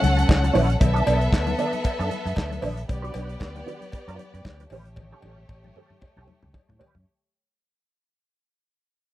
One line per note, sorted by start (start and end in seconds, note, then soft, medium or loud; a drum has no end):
0.00 0.23 C#2 medium
0.00 0.77 C#4 medium
0.00 0.77 A4 medium
0.00 0.77 F#5 medium
0.00 muted clean electric guitar stroke soft
0.00 closed hi-hat medium
0.00 high conga medium
0.17 muted clean electric guitar stroke soft
0.17 closed hi-hat medium
0.29 0.49 C#2 medium
0.29 muted clean electric guitar stroke soft
0.29 kick loud
0.29 snare loud
0.29 clap medium
0.29 cowbell medium
0.29 muted conga soft
0.29 high conga medium
0.43 muted clean electric guitar stroke medium
0.43 closed hi-hat medium
0.43 muted conga soft
0.43 high conga medium
0.53 0.75 A#1 loud
0.53 0.69 C#4 loud
0.53 0.68 E4 medium
0.53 0.68 B4 medium
0.53 open hi-hat medium
0.53 cowbell medium
0.53 low conga medium
0.69 muted clean electric guitar stroke soft
0.69 closed hi-hat medium
0.80 1.01 B1 loud
0.80 2.85 B3 medium
0.80 2.85 A4 medium
0.80 2.85 E5 medium
0.80 muted clean electric guitar stroke soft
0.80 kick loud
0.80 closed hi-hat medium
0.80 cowbell medium
0.80 low conga medium
0.94 1.04 B3 medium
0.94 1.05 D4 medium
0.94 1.05 A4 medium
0.94 closed hi-hat soft
0.94 muted conga soft
1.05 1.27 B1 medium
1.05 1.18 B3 medium
1.05 1.18 D4 medium
1.05 1.18 A4 medium
1.05 closed hi-hat medium
1.05 cowbell medium
1.05 high conga medium
1.20 muted clean electric guitar stroke soft
1.20 closed hi-hat soft
1.33 1.53 D2 medium
1.33 kick loud
1.33 snare loud
1.33 clap loud
1.33 cowbell medium
1.33 muted conga soft
1.46 muted clean electric guitar stroke soft
1.46 closed hi-hat soft
1.46 muted conga soft
1.46 high conga medium
1.58 1.73 B3 medium
1.58 1.73 D4 medium
1.58 1.72 A4 medium
1.58 closed hi-hat medium
1.58 low conga medium
1.73 muted clean electric guitar stroke soft
1.73 closed hi-hat soft
1.73 high conga medium
1.84 muted clean electric guitar stroke soft
1.84 kick loud
1.84 closed hi-hat medium
1.84 cowbell medium
1.99 2.08 F#2 loud
1.99 2.09 B3 medium
1.99 2.10 D4 medium
1.99 2.11 A4 medium
1.99 closed hi-hat medium
2.11 muted clean electric guitar stroke soft
2.11 closed hi-hat medium
2.11 high conga medium
2.25 2.34 F#2 medium
2.25 muted clean electric guitar stroke medium
2.25 snare soft
2.25 closed hi-hat medium
2.36 2.57 D2 medium
2.36 muted clean electric guitar stroke soft
2.36 kick loud
2.36 snare loud
2.36 clap medium
2.36 cowbell medium
2.36 muted conga soft
2.36 high conga medium
2.49 muted clean electric guitar stroke soft
2.49 closed hi-hat medium
2.49 muted conga soft
2.49 high conga medium
2.62 2.83 A#1 loud
2.62 2.77 B3 medium
2.62 2.76 D4 medium
2.62 2.76 B4 medium
2.62 open hi-hat medium
2.62 cowbell medium
2.62 low conga medium
2.77 muted clean electric guitar stroke soft
2.77 closed hi-hat medium
2.88 3.09 B1 loud
2.88 4.68 B3 medium
2.88 4.67 G4 medium
2.88 4.68 D5 medium
2.88 muted clean electric guitar stroke soft
2.88 kick loud
2.88 closed hi-hat medium
2.88 cowbell medium
2.88 low conga medium
3.02 3.13 D4 medium
3.02 3.13 F#4 medium
3.02 3.14 B4 medium
3.02 closed hi-hat soft
3.14 3.35 B1 loud
3.14 3.26 D4 medium
3.14 3.26 F#4 medium
3.14 3.26 B4 medium
3.14 closed hi-hat medium
3.14 cowbell medium
3.14 high conga medium
3.29 muted clean electric guitar stroke soft
3.29 closed hi-hat soft
3.40 3.61 D2 loud
3.40 kick loud
3.40 snare loud
3.40 clap medium
3.40 cowbell medium
3.55 muted clean electric guitar stroke medium
3.55 closed hi-hat soft
3.55 high conga medium
3.66 3.81 D4 medium
3.66 3.80 F#4 loud
3.66 3.80 B4 medium
3.66 closed hi-hat medium
3.66 low conga medium
3.81 muted clean electric guitar stroke soft
3.81 closed hi-hat soft
3.81 high conga medium
3.92 muted clean electric guitar stroke soft
3.92 kick loud
3.92 closed hi-hat medium
3.92 cowbell medium
3.92 muted conga soft
4.08 4.17 F#2 medium
4.08 4.18 D4 medium
4.08 4.18 F#4 medium
4.08 4.18 B4 medium
4.08 closed hi-hat medium
4.08 muted conga soft
4.19 muted clean electric guitar stroke soft
4.19 closed hi-hat medium
4.19 high conga medium
4.34 4.43 F#2 medium
4.34 muted clean electric guitar stroke medium
4.34 closed hi-hat medium
4.45 4.65 D2 medium
4.45 muted clean electric guitar stroke soft
4.45 kick loud
4.45 snare loud
4.45 clap medium
4.45 cowbell medium
4.45 muted conga soft
4.45 high conga medium
4.60 muted clean electric guitar stroke medium
4.60 closed hi-hat soft
4.60 muted conga soft
4.60 high conga medium
4.70 5.11 A1 loud
4.70 7.02 A3 medium
4.70 4.86 C#4 medium
4.70 7.02 G4 medium
4.70 4.87 G4 medium
4.70 4.86 B4 medium
4.70 7.02 C#5 medium
4.70 open hi-hat medium
4.70 cowbell medium
4.70 low conga medium
4.85 muted clean electric guitar stroke soft
4.85 closed hi-hat medium
4.96 muted clean electric guitar stroke soft
4.96 kick loud
4.96 high tom medium
4.96 cowbell medium
4.96 muted conga soft
4.96 low conga medium
5.11 5.23 C#4 medium
5.11 5.23 G4 medium
5.11 5.24 A4 medium
5.11 high tom medium
5.11 muted conga soft
5.22 5.43 A1 medium
5.22 5.35 C#4 medium
5.22 5.36 G4 medium
5.22 5.36 A4 medium
5.22 high tom medium
5.22 cowbell medium
5.22 high conga medium
5.38 muted clean electric guitar stroke soft
5.38 high tom medium
5.49 5.69 A1 loud
5.49 kick loud
5.49 mid tom medium
5.49 cowbell medium
5.49 muted conga soft
5.64 muted clean electric guitar stroke soft
5.64 mid tom medium
5.64 muted conga soft
5.64 high conga medium
5.76 5.91 C#4 medium
5.76 5.91 G4 medium
5.76 5.90 A4 medium
5.76 mid tom medium
5.76 low conga medium
5.90 muted clean electric guitar stroke soft
5.90 mid tom medium
5.90 high conga medium
6.01 muted clean electric guitar stroke soft
6.01 kick medium
6.01 mid tom medium
6.01 cowbell medium
6.01 muted conga soft
6.17 6.25 B1 medium
6.17 6.27 C#4 medium
6.17 6.27 G4 medium
6.17 6.28 A4 medium
6.17 mid tom medium
6.28 muted clean electric guitar stroke soft
6.28 mid tom medium
6.28 high conga medium
6.43 6.51 C#2 medium
6.43 muted clean electric guitar stroke soft
6.43 mid tom medium
6.53 muted clean electric guitar stroke soft
6.53 muted fingered electric bass stroke soft
6.53 kick medium
6.53 floor tom medium
6.53 cowbell medium
6.53 muted conga soft
6.53 high conga medium
6.69 6.78 A2 medium
6.69 muted clean electric guitar stroke medium
6.69 floor tom medium
6.69 high conga medium
6.79 6.94 C#4 medium
6.79 6.95 G4 medium
6.79 6.94 B4 medium
6.79 floor tom loud
6.79 cowbell medium
6.79 low conga medium
6.95 7.04 F#2 medium
6.95 muted clean electric guitar stroke soft
6.95 floor tom medium